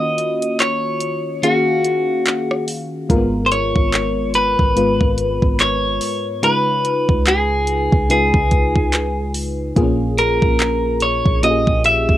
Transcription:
0.00 1.00 D#3 medium
0.00 1.00 A#3 medium
0.00 1.00 C#4 medium
0.00 1.01 F4 medium
0.00 1.01 F#4 medium
0.00 0.60 D#5 loud
0.18 closed hi-hat medium
0.42 closed hi-hat medium
0.60 1.46 C#5 loud
0.60 clap loud
0.60 closed hi-hat medium
1.00 closed hi-hat medium
1.42 2.67 D#3 medium
1.42 2.67 A#3 medium
1.42 2.67 C#4 medium
1.42 2.64 F#4 medium
1.42 2.67 G#4 medium
1.42 2.67 F5 medium
1.42 closed hi-hat medium
1.85 closed hi-hat medium
2.26 clap loud
2.26 closed hi-hat medium
2.51 cross-stick loud
2.68 open hi-hat medium
3.09 3.73 G#1 loud
3.09 4.33 G#2 medium
3.09 4.33 G#3 medium
3.09 3.17 A#3 medium
3.09 4.34 F4 medium
3.09 4.34 A#4 medium
3.09 kick loud
3.09 closed hi-hat medium
3.16 4.37 B3 medium
3.46 3.51 C5 medium
3.52 4.35 C#5 loud
3.52 closed hi-hat medium
3.76 4.56 G#1 loud
3.76 kick loud
3.93 clap loud
3.93 closed hi-hat medium
4.34 5.60 B4 loud
4.34 closed hi-hat medium
4.59 4.99 G#1 loud
4.59 kick loud
4.76 6.00 G#2 medium
4.76 6.00 G#3 medium
4.76 6.00 B3 medium
4.76 6.01 F4 medium
4.76 6.01 B4 medium
4.76 closed hi-hat medium
5.01 5.41 G#1 loud
5.01 kick medium
5.18 closed hi-hat medium
5.42 5.99 G#1 loud
5.42 kick loud
5.59 6.44 C#5 loud
5.59 clap loud
5.59 closed hi-hat medium
6.01 open hi-hat medium
6.42 7.67 C#3 medium
6.42 7.67 G#3 medium
6.42 7.67 D#4 medium
6.42 7.67 F4 medium
6.42 7.67 B4 medium
6.42 7.29 B4 loud
6.42 closed hi-hat medium
6.85 closed hi-hat medium
7.09 7.89 C#2 loud
7.09 kick medium
7.26 8.10 G#4 medium
7.26 clap loud
7.26 closed hi-hat medium
7.67 closed hi-hat medium
7.92 8.32 C#2 loud
7.92 kick loud
8.09 9.33 C#3 medium
8.09 9.33 G#3 medium
8.09 9.34 D#4 medium
8.09 9.34 F4 medium
8.09 9.31 G#4 medium
8.09 9.34 B4 medium
8.09 closed hi-hat medium
8.34 9.72 C#2 loud
8.34 kick medium
8.51 kick loud
8.51 closed hi-hat medium
8.76 kick loud
8.93 clap loud
8.93 closed hi-hat medium
9.34 open hi-hat medium
9.76 10.40 A#1 loud
9.76 11.00 A#2 loud
9.76 11.00 A#3 medium
9.76 9.84 B3 medium
9.76 11.01 F4 medium
9.76 11.01 G#4 loud
9.76 kick loud
9.76 closed hi-hat medium
9.83 11.04 C#4 medium
10.18 11.04 A#4 loud
10.18 closed hi-hat medium
10.42 11.22 A#1 loud
10.42 kick loud
10.60 clap loud
10.60 closed hi-hat medium
11.00 11.44 C#5 medium
11.00 closed hi-hat medium
11.26 11.66 A#1 loud
11.26 kick medium
11.43 12.18 A#2 medium
11.43 12.18 A#3 medium
11.43 12.18 C#4 medium
11.43 12.18 F4 medium
11.43 11.51 G4 medium
11.43 11.82 D#5 loud
11.43 closed hi-hat medium
11.50 12.18 G#4 medium
11.67 12.07 A#1 loud
11.67 kick medium
11.84 12.18 E5 loud
11.84 closed hi-hat medium
12.09 12.18 E1 loud
12.09 kick loud

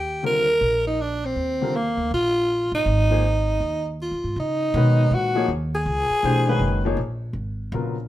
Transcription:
0.00 0.57 D#2 medium
0.00 0.22 G4 medium
0.23 0.45 D3 medium
0.23 0.45 G3 soft
0.23 0.45 C4 medium
0.23 0.46 F4 soft
0.23 0.46 A#4 medium
0.23 0.83 A#4 loud
0.61 1.33 A#1 medium
0.87 1.03 D#4 medium
1.01 1.27 D4 medium
1.25 1.77 C4 medium
1.36 1.94 D#2 medium
1.61 1.73 D3 medium
1.61 1.73 G3 medium
1.61 1.74 C4 soft
1.61 1.74 F4 soft
1.61 1.74 A#4 medium
1.76 2.12 A#3 medium
1.97 2.10 D2 medium
2.11 2.69 A#1 medium
2.11 2.70 F4 medium
2.72 2.85 A1 medium
2.72 3.96 D#4 medium
2.86 3.57 G#1 medium
3.10 3.23 F3 medium
3.10 3.23 A#3 medium
3.10 3.23 D#4 medium
3.10 3.23 G#4 medium
3.10 3.23 C5 medium
3.60 4.07 D#2 medium
4.02 4.35 F4 medium
4.11 4.23 F#2 medium
4.24 4.35 G#2 medium
4.36 4.72 C#3 medium
4.36 5.16 D#4 medium
4.74 5.10 B2 loud
4.74 5.30 D#3 medium
4.74 5.31 G#3 medium
4.74 5.31 C#4 medium
4.74 5.31 F#4 medium
4.74 5.32 B4 medium
5.11 5.47 A#2 medium
5.11 5.50 F#4 medium
5.35 5.47 F3 medium
5.35 5.48 A#3 medium
5.35 5.47 D#4 medium
5.35 5.48 G#4 medium
5.35 5.49 C#5 medium
5.48 5.85 D#2 medium
5.75 6.81 G#4 loud
5.86 6.08 C#2 medium
6.10 muted upright bass stroke soft
6.23 6.59 B1 medium
6.23 6.45 E3 medium
6.23 6.45 A3 medium
6.23 6.45 D4 medium
6.23 6.45 G4 medium
6.23 6.45 C5 medium
6.48 6.80 D#3 medium
6.48 6.80 G#3 medium
6.48 6.80 C#4 medium
6.48 6.80 F#4 medium
6.48 6.81 B4 medium
6.59 6.96 F#1 medium
6.85 6.97 F3 medium
6.85 6.97 A#3 medium
6.85 6.97 D#4 medium
6.85 6.97 G#4 medium
6.85 6.97 C#5 medium
6.97 7.33 A#1 medium
7.33 7.70 G#1 medium
7.72 8.08 A#1 medium
7.72 7.94 C#3 medium
7.72 7.94 F#3 medium
7.72 7.94 B3 soft
7.72 7.95 F4 soft
7.72 7.95 A#4 medium

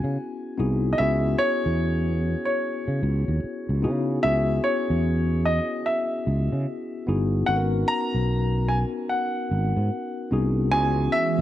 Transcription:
0.00 0.16 C#3 medium
0.00 0.54 G#5 medium
0.58 0.93 C2 medium
0.58 0.96 B3 medium
0.58 0.96 D#4 medium
0.58 0.96 E4 medium
0.58 0.97 F#4 medium
0.58 0.97 G#4 medium
0.93 0.98 D#5 medium
0.98 1.34 C#2 medium
0.98 2.50 B3 medium
0.98 2.50 C#4 medium
0.98 2.51 E4 medium
0.98 2.51 F#4 medium
0.98 2.51 G#4 medium
0.98 1.40 E5 medium
1.38 2.44 C#5 loud
1.66 2.34 E2 medium
2.45 3.78 C#5 medium
2.88 3.00 C#3 medium
3.03 3.24 C#2 medium
3.28 3.41 D#2 medium
3.44 muted fretless electric bass stroke soft
3.69 3.86 C#2 medium
3.82 4.18 C#3 medium
3.82 4.20 B3 medium
3.82 4.20 D#4 medium
3.82 4.21 E4 medium
3.82 4.21 F#4 medium
3.82 4.21 G#4 medium
4.23 4.58 C#2 medium
4.23 5.75 B3 medium
4.23 5.75 C#4 medium
4.23 5.75 E4 medium
4.23 5.75 F#4 medium
4.23 5.76 G#4 medium
4.23 4.61 E5 loud
4.64 5.41 C#5 medium
4.90 5.59 E2 medium
5.45 5.87 D#5 medium
5.86 7.03 E5 medium
6.27 6.48 C#2 medium
6.53 6.65 C#3 medium
7.07 7.42 G1 medium
7.07 7.45 B3 medium
7.07 7.45 D#4 medium
7.07 7.45 E4 medium
7.07 7.46 F#4 medium
7.07 7.46 G#4 medium
7.46 7.83 G#1 medium
7.46 8.99 B3 medium
7.46 8.99 C#4 medium
7.46 8.99 D#4 medium
7.46 9.00 F#4 medium
7.46 7.57 A4 medium
7.46 7.56 F#5 medium
7.56 9.03 A#4 medium
7.88 8.71 A#5 loud
8.14 8.83 B1 medium
8.68 8.78 G#5 medium
9.09 10.27 F#5 medium
9.51 9.72 G#1 medium
9.76 9.89 G#2 medium
10.31 10.73 C2 medium
10.31 10.69 B3 medium
10.31 10.69 C#4 medium
10.31 10.69 D#4 medium
10.31 10.70 F#4 medium
10.31 10.70 G#4 medium
10.72 11.07 C#2 loud
10.72 11.41 E3 medium
10.72 11.41 G#3 medium
10.72 11.41 B3 medium
10.72 11.41 C#4 medium
10.72 11.41 E4 medium
10.72 11.41 F#4 medium
10.72 11.41 G#4 medium
10.72 11.13 G#5 loud
11.12 11.41 E5 loud

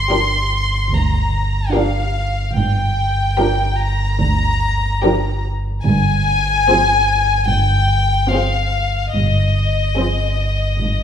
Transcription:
0.00 2.52 G1 medium
0.00 0.89 C6 medium
0.10 0.72 F3 soft
0.10 0.72 D4 soft
0.10 0.72 G4 soft
0.10 0.72 A#4 soft
0.92 1.58 D2 soft
0.92 1.74 A#5 medium
1.74 2.36 F3 soft
1.74 2.36 D4 soft
1.74 2.36 G4 soft
1.74 2.36 A#4 soft
1.74 2.57 F5 medium
2.56 3.22 G1 medium
2.56 5.81 G1 medium
2.56 3.23 G2 medium
2.56 3.78 G5 medium
3.38 4.01 F3 soft
3.38 4.01 D4 soft
3.38 4.00 G4 soft
3.38 4.00 A#4 soft
3.80 5.44 A#5 medium
4.20 4.87 D2 medium
5.03 5.65 F3 soft
5.03 5.65 D4 soft
5.03 5.65 G4 medium
5.03 5.65 A#4 soft
5.84 6.51 G1 medium
5.84 9.10 G1 medium
5.84 6.52 G2 medium
5.84 7.45 G#5 medium
6.68 7.30 F3 soft
6.68 7.30 C4 soft
6.68 7.29 G#4 soft
6.68 7.30 C5 soft
7.49 8.16 G1 soft
7.49 8.16 G2 soft
7.49 8.32 G5 medium
8.32 8.94 F3 soft
8.32 8.94 C4 soft
8.32 8.94 G#4 soft
8.32 8.94 C5 soft
8.32 9.14 F5 medium
9.14 11.03 G1 medium
9.14 9.81 G1 soft
9.14 9.81 G2 soft
9.14 11.03 D#5 soft
9.97 10.58 F3 soft
9.97 10.58 C4 soft
9.97 10.58 G#4 soft
9.97 10.58 C5 soft
10.78 11.03 G1 soft
10.78 11.03 G2 soft

